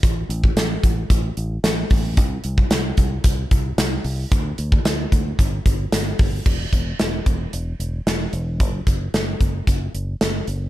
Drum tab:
CC |----------------|----------------|----------------|x---------------|
HH |x-x-x-x-x-x-x-o-|x-x-x-x-x-x-x-o-|x-x-x-x-x-x-x-o-|--x-x-x-x-x-x-x-|
TB |----x-------x---|----x-------x---|----x-------x---|----------------|
SD |----o-------o---|----o-------o---|----o-------o---|----o-------o---|
BD |o--o--o-o-----o-|o--o--o-o-o-----|o--o--o-o-o---o-|o-o---o---------|

CC |----------------|
HH |x-x-x-x-x-x-x-x-|
TB |----------------|
SD |----o-------o---|
BD |o-o---o-o-------|